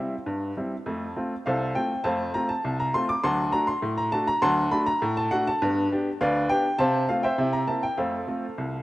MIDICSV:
0, 0, Header, 1, 2, 480
1, 0, Start_track
1, 0, Key_signature, -1, "major"
1, 0, Tempo, 593472
1, 694, Time_signature, 2, 2, 24, 8
1, 7137, End_track
2, 0, Start_track
2, 0, Title_t, "Upright piano"
2, 0, Program_c, 0, 0
2, 0, Note_on_c, 0, 55, 43
2, 0, Note_on_c, 0, 60, 40
2, 0, Note_on_c, 0, 64, 54
2, 0, Note_on_c, 0, 77, 63
2, 0, Note_on_c, 0, 81, 70
2, 0, Note_on_c, 0, 84, 78
2, 106, Note_off_c, 0, 55, 0
2, 108, Note_off_c, 0, 60, 0
2, 109, Note_off_c, 0, 64, 0
2, 214, Note_on_c, 0, 43, 64
2, 418, Note_off_c, 0, 43, 0
2, 418, Note_off_c, 0, 84, 0
2, 424, Note_off_c, 0, 77, 0
2, 424, Note_off_c, 0, 81, 0
2, 461, Note_on_c, 0, 55, 45
2, 465, Note_on_c, 0, 60, 40
2, 466, Note_on_c, 0, 64, 41
2, 591, Note_off_c, 0, 55, 0
2, 594, Note_off_c, 0, 60, 0
2, 595, Note_off_c, 0, 64, 0
2, 697, Note_on_c, 0, 41, 69
2, 711, Note_on_c, 0, 57, 53
2, 839, Note_off_c, 0, 57, 0
2, 901, Note_off_c, 0, 41, 0
2, 943, Note_on_c, 0, 60, 48
2, 944, Note_on_c, 0, 57, 41
2, 947, Note_on_c, 0, 65, 48
2, 1074, Note_off_c, 0, 57, 0
2, 1074, Note_off_c, 0, 60, 0
2, 1076, Note_off_c, 0, 65, 0
2, 1180, Note_on_c, 0, 77, 80
2, 1185, Note_on_c, 0, 36, 77
2, 1191, Note_on_c, 0, 69, 62
2, 1193, Note_on_c, 0, 72, 61
2, 1386, Note_off_c, 0, 36, 0
2, 1407, Note_off_c, 0, 77, 0
2, 1408, Note_off_c, 0, 69, 0
2, 1409, Note_off_c, 0, 72, 0
2, 1418, Note_on_c, 0, 79, 81
2, 1420, Note_on_c, 0, 57, 46
2, 1424, Note_on_c, 0, 60, 43
2, 1424, Note_on_c, 0, 65, 47
2, 1551, Note_off_c, 0, 57, 0
2, 1554, Note_off_c, 0, 60, 0
2, 1555, Note_off_c, 0, 65, 0
2, 1646, Note_off_c, 0, 79, 0
2, 1649, Note_on_c, 0, 81, 83
2, 1654, Note_on_c, 0, 41, 79
2, 1660, Note_on_c, 0, 77, 69
2, 1662, Note_on_c, 0, 72, 66
2, 1670, Note_on_c, 0, 57, 46
2, 1799, Note_off_c, 0, 57, 0
2, 1859, Note_off_c, 0, 41, 0
2, 1881, Note_off_c, 0, 81, 0
2, 1882, Note_off_c, 0, 77, 0
2, 1883, Note_off_c, 0, 72, 0
2, 1893, Note_on_c, 0, 82, 83
2, 1898, Note_on_c, 0, 57, 44
2, 1900, Note_on_c, 0, 60, 49
2, 1904, Note_on_c, 0, 65, 51
2, 2013, Note_on_c, 0, 81, 79
2, 2016, Note_off_c, 0, 82, 0
2, 2030, Note_off_c, 0, 57, 0
2, 2031, Note_off_c, 0, 60, 0
2, 2034, Note_off_c, 0, 65, 0
2, 2138, Note_on_c, 0, 36, 73
2, 2243, Note_off_c, 0, 81, 0
2, 2261, Note_on_c, 0, 82, 80
2, 2342, Note_off_c, 0, 36, 0
2, 2379, Note_off_c, 0, 82, 0
2, 2379, Note_on_c, 0, 84, 101
2, 2382, Note_on_c, 0, 57, 48
2, 2388, Note_on_c, 0, 60, 45
2, 2389, Note_on_c, 0, 65, 54
2, 2498, Note_off_c, 0, 84, 0
2, 2499, Note_on_c, 0, 86, 102
2, 2513, Note_off_c, 0, 57, 0
2, 2517, Note_off_c, 0, 60, 0
2, 2518, Note_off_c, 0, 65, 0
2, 2616, Note_on_c, 0, 84, 107
2, 2617, Note_on_c, 0, 38, 82
2, 2618, Note_off_c, 0, 86, 0
2, 2624, Note_on_c, 0, 78, 71
2, 2626, Note_on_c, 0, 81, 76
2, 2632, Note_on_c, 0, 54, 57
2, 2760, Note_off_c, 0, 54, 0
2, 2822, Note_off_c, 0, 38, 0
2, 2845, Note_off_c, 0, 78, 0
2, 2845, Note_off_c, 0, 84, 0
2, 2846, Note_off_c, 0, 81, 0
2, 2849, Note_on_c, 0, 82, 103
2, 2854, Note_on_c, 0, 57, 46
2, 2854, Note_on_c, 0, 62, 52
2, 2859, Note_on_c, 0, 66, 55
2, 2969, Note_on_c, 0, 84, 89
2, 2974, Note_off_c, 0, 82, 0
2, 2987, Note_off_c, 0, 57, 0
2, 2988, Note_off_c, 0, 62, 0
2, 2991, Note_off_c, 0, 66, 0
2, 3092, Note_on_c, 0, 45, 74
2, 3165, Note_off_c, 0, 84, 0
2, 3215, Note_on_c, 0, 82, 87
2, 3298, Note_off_c, 0, 45, 0
2, 3333, Note_on_c, 0, 81, 97
2, 3336, Note_off_c, 0, 82, 0
2, 3337, Note_on_c, 0, 57, 54
2, 3338, Note_on_c, 0, 62, 53
2, 3343, Note_on_c, 0, 66, 60
2, 3455, Note_off_c, 0, 81, 0
2, 3457, Note_on_c, 0, 82, 101
2, 3469, Note_off_c, 0, 57, 0
2, 3470, Note_off_c, 0, 62, 0
2, 3473, Note_off_c, 0, 66, 0
2, 3573, Note_on_c, 0, 38, 91
2, 3574, Note_on_c, 0, 84, 110
2, 3577, Note_off_c, 0, 82, 0
2, 3579, Note_on_c, 0, 81, 90
2, 3580, Note_on_c, 0, 78, 87
2, 3590, Note_on_c, 0, 54, 60
2, 3718, Note_off_c, 0, 54, 0
2, 3767, Note_off_c, 0, 84, 0
2, 3778, Note_off_c, 0, 38, 0
2, 3800, Note_off_c, 0, 81, 0
2, 3801, Note_off_c, 0, 78, 0
2, 3813, Note_on_c, 0, 83, 98
2, 3814, Note_on_c, 0, 57, 56
2, 3816, Note_on_c, 0, 62, 57
2, 3820, Note_on_c, 0, 66, 59
2, 3934, Note_off_c, 0, 83, 0
2, 3935, Note_on_c, 0, 82, 101
2, 3946, Note_off_c, 0, 57, 0
2, 3948, Note_off_c, 0, 62, 0
2, 3951, Note_off_c, 0, 66, 0
2, 4060, Note_on_c, 0, 45, 84
2, 4162, Note_off_c, 0, 82, 0
2, 4182, Note_on_c, 0, 81, 93
2, 4261, Note_off_c, 0, 45, 0
2, 4295, Note_on_c, 0, 78, 99
2, 4298, Note_off_c, 0, 81, 0
2, 4299, Note_on_c, 0, 57, 60
2, 4301, Note_on_c, 0, 62, 58
2, 4306, Note_on_c, 0, 66, 70
2, 4414, Note_off_c, 0, 78, 0
2, 4428, Note_on_c, 0, 81, 97
2, 4429, Note_off_c, 0, 57, 0
2, 4430, Note_off_c, 0, 62, 0
2, 4434, Note_off_c, 0, 66, 0
2, 4540, Note_off_c, 0, 81, 0
2, 4546, Note_on_c, 0, 43, 98
2, 4564, Note_on_c, 0, 59, 63
2, 4687, Note_off_c, 0, 59, 0
2, 4744, Note_off_c, 0, 43, 0
2, 4787, Note_on_c, 0, 59, 55
2, 4790, Note_on_c, 0, 62, 59
2, 4794, Note_on_c, 0, 67, 59
2, 4914, Note_off_c, 0, 59, 0
2, 4916, Note_off_c, 0, 62, 0
2, 4919, Note_off_c, 0, 67, 0
2, 5020, Note_on_c, 0, 38, 87
2, 5020, Note_on_c, 0, 77, 104
2, 5027, Note_on_c, 0, 71, 80
2, 5028, Note_on_c, 0, 74, 73
2, 5207, Note_off_c, 0, 77, 0
2, 5219, Note_off_c, 0, 38, 0
2, 5241, Note_off_c, 0, 71, 0
2, 5242, Note_off_c, 0, 74, 0
2, 5253, Note_on_c, 0, 79, 106
2, 5256, Note_on_c, 0, 59, 53
2, 5260, Note_on_c, 0, 62, 56
2, 5262, Note_on_c, 0, 67, 58
2, 5385, Note_off_c, 0, 59, 0
2, 5388, Note_off_c, 0, 62, 0
2, 5390, Note_off_c, 0, 67, 0
2, 5477, Note_off_c, 0, 79, 0
2, 5487, Note_on_c, 0, 81, 102
2, 5491, Note_on_c, 0, 48, 91
2, 5499, Note_on_c, 0, 72, 81
2, 5500, Note_on_c, 0, 77, 77
2, 5692, Note_off_c, 0, 48, 0
2, 5714, Note_off_c, 0, 81, 0
2, 5715, Note_off_c, 0, 72, 0
2, 5716, Note_off_c, 0, 77, 0
2, 5731, Note_on_c, 0, 77, 85
2, 5735, Note_on_c, 0, 57, 48
2, 5738, Note_on_c, 0, 60, 47
2, 5741, Note_on_c, 0, 65, 54
2, 5848, Note_off_c, 0, 77, 0
2, 5848, Note_on_c, 0, 79, 77
2, 5857, Note_on_c, 0, 76, 73
2, 5858, Note_on_c, 0, 72, 64
2, 5864, Note_off_c, 0, 57, 0
2, 5866, Note_off_c, 0, 60, 0
2, 5869, Note_off_c, 0, 65, 0
2, 5968, Note_on_c, 0, 48, 85
2, 5984, Note_on_c, 0, 64, 52
2, 6075, Note_off_c, 0, 76, 0
2, 6075, Note_off_c, 0, 79, 0
2, 6076, Note_off_c, 0, 72, 0
2, 6088, Note_on_c, 0, 82, 77
2, 6111, Note_off_c, 0, 64, 0
2, 6172, Note_off_c, 0, 48, 0
2, 6206, Note_on_c, 0, 81, 77
2, 6207, Note_off_c, 0, 82, 0
2, 6208, Note_on_c, 0, 58, 46
2, 6212, Note_on_c, 0, 64, 43
2, 6213, Note_on_c, 0, 60, 41
2, 6327, Note_off_c, 0, 81, 0
2, 6332, Note_on_c, 0, 79, 80
2, 6340, Note_off_c, 0, 58, 0
2, 6343, Note_off_c, 0, 64, 0
2, 6344, Note_off_c, 0, 60, 0
2, 6449, Note_on_c, 0, 77, 70
2, 6450, Note_off_c, 0, 79, 0
2, 6451, Note_on_c, 0, 41, 63
2, 6457, Note_on_c, 0, 69, 53
2, 6458, Note_on_c, 0, 72, 52
2, 6467, Note_on_c, 0, 57, 44
2, 6595, Note_off_c, 0, 57, 0
2, 6655, Note_off_c, 0, 41, 0
2, 6691, Note_on_c, 0, 57, 41
2, 6698, Note_on_c, 0, 60, 41
2, 6698, Note_on_c, 0, 65, 46
2, 6823, Note_off_c, 0, 57, 0
2, 6828, Note_off_c, 0, 60, 0
2, 6828, Note_off_c, 0, 65, 0
2, 6937, Note_on_c, 0, 36, 57
2, 7137, Note_off_c, 0, 36, 0
2, 7137, Note_off_c, 0, 69, 0
2, 7137, Note_off_c, 0, 72, 0
2, 7137, Note_off_c, 0, 77, 0
2, 7137, End_track
0, 0, End_of_file